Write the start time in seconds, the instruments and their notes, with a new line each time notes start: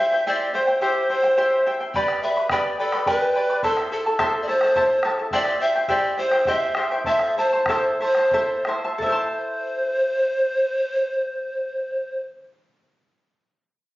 Already playing: pan flute E5
0.00 charango E4 C5 E5 G5
0.12 charango E4 C5 G5
0.27 charango E4 G4 C5 E5 G5, pan flute D5
0.54 charango E4 C5 E5 G5, pan flute C5
0.67 charango E4 C5 G5
0.81 charango E4 G4 C5 E5 G5, pan flute C5
1.10 charango E4 C5 E5 G5, pan flute C5
1.23 charango E4 C5 G5
1.37 charango E4 G4 C5 E5 G5
1.66 charango E4 C5 E5 G5
1.80 charango E4 C5 G5
1.94 charango G4 B4 D5 G5 B5, pan flute D5, bombo low
2.08 bombo rim
2.23 charango B4 D5 G5 B5, pan flute E5
2.37 charango B4 D5 B5
2.49 charango G4 B4 D5 G5 B5, pan flute D5, bombo rim, bombo low
2.79 pan flute A4, charango B4 D5 G5 B5
2.92 charango B4 D5 B5, bombo rim
3.06 charango G4 B4 D5 G5 B5, pan flute B4, bombo low
3.21 bombo rim
3.36 charango B4 D5 G5 B5
3.50 charango B4 D5 B5
3.63 charango E4 A4 C5 E5 A5, pan flute A4, bombo low
3.77 bombo rim
3.91 charango E4 A4 E5 A5, pan flute A4
4.06 charango E4 A4 A5
4.19 charango E4 A4 C5 E5 A5, bombo rim, bombo low
4.42 pan flute D5
4.48 charango E4 A4 E5 A5, pan flute C5
4.61 charango E4 A4 A5, bombo rim
4.76 charango E4 A4 C5 E5 A5, bombo low
4.89 bombo rim
5.03 charango E4 A4 E5 A5, bombo rim
5.19 charango E4 A4 A5
5.31 charango E4 G4 C5 E5 G5, pan flute D5, bombo low
5.45 bombo rim
5.60 charango E4 C5 E5 G5, pan flute E5
5.75 charango E4 C5 G5
5.88 charango E4 G4 C5 E5 G5, pan flute D5, bombo low
6.17 charango E4 C5 E5 G5, pan flute C5
6.31 charango E4 C5 G5, bombo rim
6.45 charango E4 G4 C5 E5 G5, pan flute E5, bombo low
6.75 charango E4 C5 E5 G5, bombo rim
6.91 charango E4 C5 G5
7.04 charango E4 A4 C5 E5 A5, pan flute E5, bombo rim, bombo low
7.19 bombo rim
7.38 charango E4 C5 E5 A5, pan flute C5
7.53 charango E4 C5 A5
7.66 charango E4 A4 C5 E5, pan flute C5, bombo rim, bombo low
7.70 charango A5
8.00 charango E4 C5 E5 A5, pan flute C5
8.15 charango E4 C5 A5, bombo rim
8.31 charango E4 A4 C5 E5 A5, bombo rim, bombo low
8.65 charango E4 C5 E5 A5, bombo rim
8.84 charango E4 C5 A5
8.98 charango A4, pan flute C5, bombo low
9.02 charango E4 E5
9.10 charango C5 A5